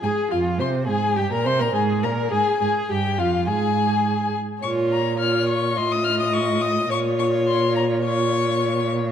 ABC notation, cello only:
X:1
M:4/4
L:1/16
Q:1/4=105
K:Fm
V:1 name="Cello" clef=bass
A,,2 F,,2 C,2 A,,2 G,, B,, C, B,, A,,2 B,,2 | A,,2 A,,2 G,,2 F,,2 A,,6 z2 | B,,8 =A,,8 | B,,16 |]